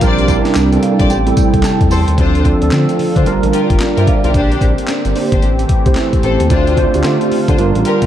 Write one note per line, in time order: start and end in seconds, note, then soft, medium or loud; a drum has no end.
0.00 0.37 A#1 loud
0.00 1.08 C3 medium
0.00 2.15 G3 medium
0.00 0.27 G3 loud
0.00 1.07 A#3 medium
0.00 0.27 C4 medium
0.00 1.08 D4 medium
0.00 0.27 D4 medium
0.00 0.27 G4 loud
0.00 0.27 A#4 loud
0.00 0.27 C5 loud
0.00 0.27 D5 loud
0.00 kick loud
0.00 closed hi-hat medium
0.00 tambourine medium
0.18 closed hi-hat medium
0.28 0.68 G3 medium
0.28 0.69 C4 medium
0.28 0.69 D4 medium
0.28 0.69 E4 loud
0.28 kick medium
0.28 closed hi-hat medium
0.28 tambourine medium
0.45 snare medium
0.45 closed hi-hat medium
0.55 0.78 C2 medium
0.55 snare loud
0.55 clap loud
0.55 closed hi-hat medium
0.55 tambourine loud
0.72 1.10 G3 medium
0.72 1.10 C4 medium
0.72 1.10 D4 medium
0.72 1.10 A4 loud
0.72 closed hi-hat soft
0.83 1.08 F5 medium
0.83 closed hi-hat medium
0.99 1.08 A#1 loud
0.99 1.09 G4 medium
0.99 1.09 C5 medium
0.99 1.09 D5 medium
0.99 kick loud
0.99 closed hi-hat medium
1.09 1.32 A1 loud
1.09 2.17 C3 medium
1.09 2.16 A3 medium
1.09 2.17 E4 medium
1.09 1.35 G5 medium
1.09 closed hi-hat medium
1.09 tambourine medium
1.26 2.12 G3 loud
1.26 2.13 C4 medium
1.26 2.13 E4 medium
1.26 2.13 A4 loud
1.26 closed hi-hat medium
1.37 1.62 G5 medium
1.37 kick loud
1.37 closed hi-hat medium
1.37 tambourine medium
1.54 1.62 C2 medium
1.54 kick medium
1.54 closed hi-hat medium
1.63 1.89 A5 medium
1.63 snare loud
1.63 clap medium
1.63 closed hi-hat medium
1.63 tambourine loud
1.81 1.89 F2 loud
1.81 kick loud
1.81 closed hi-hat medium
1.90 2.05 E2 medium
1.90 2.06 G4 medium
1.90 2.06 A4 medium
1.90 2.06 C5 medium
1.90 2.16 C6 medium
1.90 open hi-hat medium
1.90 tambourine medium
2.08 2.16 D#2 medium
2.08 closed hi-hat medium
2.17 2.54 D2 loud
2.17 3.25 D3 medium
2.17 2.44 F3 medium
2.17 3.25 A3 medium
2.17 3.25 C4 medium
2.17 2.44 C4 medium
2.17 2.43 D4 loud
2.17 2.44 D4 medium
2.17 4.32 F4 medium
2.17 2.43 F4 medium
2.17 2.44 A4 medium
2.17 2.43 C5 loud
2.17 kick loud
2.17 closed hi-hat medium
2.35 closed hi-hat medium
2.45 2.60 F3 medium
2.45 2.61 C4 medium
2.45 2.61 D4 medium
2.45 2.61 A4 medium
2.45 kick medium
2.45 closed hi-hat medium
2.62 2.70 D2 medium
2.62 3.22 F3 medium
2.62 3.22 C4 medium
2.62 3.23 D4 medium
2.62 3.23 A4 medium
2.62 closed hi-hat medium
2.72 2.86 D3 loud
2.72 snare loud
2.72 clap medium
2.72 closed hi-hat medium
2.89 closed hi-hat soft
2.99 3.06 D3 soft
2.99 open hi-hat medium
3.15 3.24 D3 loud
3.15 3.25 D4 medium
3.15 3.25 F4 medium
3.15 3.25 C5 medium
3.15 kick loud
3.15 closed hi-hat medium
3.26 3.40 G1 loud
3.26 5.40 D3 medium
3.26 3.77 G3 loud
3.26 4.33 G3 medium
3.26 5.40 A#3 medium
3.26 3.77 D4 medium
3.26 3.77 F4 medium
3.26 3.78 A#4 loud
3.26 closed hi-hat medium
3.43 3.51 A1 medium
3.43 closed hi-hat soft
3.53 3.68 F4 medium
3.53 3.68 G4 medium
3.53 3.68 A#4 medium
3.53 closed hi-hat medium
3.70 3.78 G1 medium
3.70 kick medium
3.70 closed hi-hat medium
3.80 3.97 A#4 medium
3.80 3.96 D5 medium
3.80 snare loud
3.80 clap medium
3.80 closed hi-hat medium
3.97 4.05 G2 medium
3.97 4.06 F4 medium
3.97 4.06 G4 medium
3.97 4.06 A#4 medium
3.97 4.07 C5 medium
3.97 4.07 E5 medium
3.97 closed hi-hat medium
4.07 4.24 D5 medium
4.07 4.23 F5 medium
4.07 kick loud
4.07 closed hi-hat medium
4.24 4.33 B1 loud
4.24 4.33 F4 medium
4.24 4.33 G4 medium
4.24 4.33 A#4 medium
4.24 4.50 A#4 medium
4.24 4.50 D5 medium
4.24 closed hi-hat medium
4.34 4.56 A#1 loud
4.34 7.55 C4 medium
4.34 4.59 D4 loud
4.34 6.48 G4 medium
4.34 4.60 G4 loud
4.34 4.60 C5 loud
4.34 kick loud
4.34 closed hi-hat medium
4.52 closed hi-hat soft
4.61 4.75 A#1 loud
4.61 kick medium
4.61 closed hi-hat medium
4.78 closed hi-hat medium
4.88 snare loud
4.88 clap medium
4.88 closed hi-hat medium
5.05 5.13 G1 loud
5.05 closed hi-hat soft
5.15 5.42 A#3 medium
5.15 5.42 D4 medium
5.15 5.43 G4 medium
5.15 5.43 C5 medium
5.15 open hi-hat medium
5.32 5.41 G1 loud
5.32 5.41 D4 medium
5.32 5.42 G4 medium
5.32 5.42 C5 medium
5.32 kick loud
5.32 closed hi-hat medium
5.42 5.64 A1 loud
5.42 6.49 E3 medium
5.42 6.49 A3 medium
5.42 closed hi-hat medium
5.59 closed hi-hat soft
5.69 kick loud
5.69 closed hi-hat medium
5.86 5.94 C2 medium
5.86 6.46 A3 medium
5.86 6.47 E4 medium
5.86 6.47 G4 medium
5.86 6.47 C5 medium
5.86 kick medium
5.86 closed hi-hat medium
5.95 snare loud
5.95 clap medium
5.95 closed hi-hat medium
6.13 kick medium
6.13 closed hi-hat soft
6.23 6.37 A1 medium
6.23 6.38 G4 medium
6.23 6.39 A4 medium
6.23 6.39 C5 medium
6.23 closed hi-hat medium
6.40 6.49 D#2 medium
6.40 closed hi-hat medium
6.50 6.86 D2 loud
6.50 8.06 D3 medium
6.50 7.57 A3 medium
6.50 6.76 A3 medium
6.50 6.75 D4 loud
6.50 6.76 D4 medium
6.50 8.06 F4 medium
6.50 6.75 F4 medium
6.50 6.76 F4 medium
6.50 6.76 C5 loud
6.50 6.76 C5 medium
6.50 kick loud
6.50 closed hi-hat medium
6.67 closed hi-hat medium
6.77 6.93 A3 medium
6.77 6.93 D4 medium
6.77 6.93 F4 medium
6.77 6.93 C5 loud
6.77 kick medium
6.77 closed hi-hat medium
6.94 7.03 D2 medium
6.94 7.54 A3 medium
6.94 7.55 D4 medium
6.94 7.55 F4 medium
6.94 7.55 G4 loud
6.94 closed hi-hat medium
7.04 7.18 D3 loud
7.04 snare loud
7.04 clap medium
7.04 closed hi-hat medium
7.21 closed hi-hat soft
7.32 7.38 D3 soft
7.32 open hi-hat medium
7.48 7.57 D3 loud
7.48 7.57 D4 medium
7.48 7.57 F4 medium
7.48 7.58 C5 medium
7.48 kick loud
7.48 closed hi-hat medium
7.58 7.72 G1 loud
7.58 8.06 G3 medium
7.58 8.06 G3 loud
7.58 8.06 A#3 medium
7.58 8.06 D4 loud
7.58 8.06 F4 medium
7.58 8.06 A#4 loud
7.58 closed hi-hat medium
7.75 7.84 A1 medium
7.75 closed hi-hat soft
7.85 8.01 F4 medium
7.85 8.01 G4 medium
7.85 8.01 A#4 medium
7.85 closed hi-hat medium
8.02 8.06 G1 medium
8.02 kick medium
8.02 closed hi-hat medium